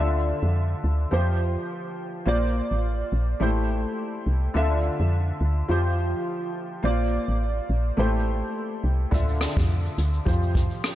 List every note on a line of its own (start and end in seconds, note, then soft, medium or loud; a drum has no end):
0.00 0.33 D2 loud
0.00 1.09 D3 medium
0.00 1.10 D4 medium
0.00 1.10 F4 medium
0.00 1.11 E5 medium
0.43 0.75 F2 medium
0.84 1.06 D2 medium
1.11 1.57 F2 loud
1.11 2.24 F3 medium
1.11 2.24 F4 medium
1.11 2.25 G4 medium
1.11 2.25 C5 medium
2.25 2.62 A#1 loud
2.25 3.38 A#3 medium
2.25 3.38 F4 medium
2.25 3.39 C5 medium
2.25 3.39 D5 medium
2.71 3.04 A1 medium
3.12 3.35 A#1 medium
3.40 3.86 A1 loud
3.40 4.52 A3 medium
3.40 4.53 E4 medium
3.40 4.53 G4 medium
3.40 4.54 C5 medium
4.27 4.49 C2 medium
4.54 4.90 D2 loud
4.54 5.67 D3 medium
4.54 5.67 D4 medium
4.54 5.67 F4 medium
4.54 5.68 E5 medium
5.00 5.32 F2 loud
5.41 5.63 D2 medium
5.68 6.14 F2 loud
5.68 6.81 F3 medium
5.68 6.81 F4 medium
5.68 6.82 G4 medium
5.68 6.82 C5 medium
6.83 7.19 A#1 loud
6.83 7.95 A#3 medium
6.83 7.96 F4 medium
6.83 7.96 C5 medium
6.83 7.96 D5 medium
7.28 7.61 A1 medium
7.70 7.92 A#1 medium
7.97 8.43 A1 loud
7.97 9.09 A3 medium
7.97 9.10 E4 medium
7.97 9.10 G4 medium
7.97 9.11 C5 medium
8.84 9.06 C2 medium
9.11 9.47 D2 loud
9.11 10.24 D3 medium
9.11 10.24 D4 medium
9.11 10.25 F4 medium
9.11 10.25 E5 medium
9.11 kick loud
9.11 shaker medium
9.29 shaker medium
9.41 cross-stick medium
9.41 closed hi-hat medium
9.41 shaker medium
9.57 9.89 F2 medium
9.57 kick loud
9.57 shaker medium
9.70 shaker medium
9.86 shaker medium
9.98 10.21 D2 medium
9.98 closed hi-hat medium
9.98 shaker medium
10.14 shaker medium
10.25 10.72 F2 loud
10.25 10.95 F3 medium
10.25 10.95 F4 medium
10.25 10.95 G4 medium
10.25 10.95 C5 medium
10.25 kick medium
10.25 shaker medium
10.43 shaker medium
10.55 kick medium
10.55 closed hi-hat medium
10.55 shaker soft
10.71 shaker medium
10.84 cross-stick loud
10.84 shaker medium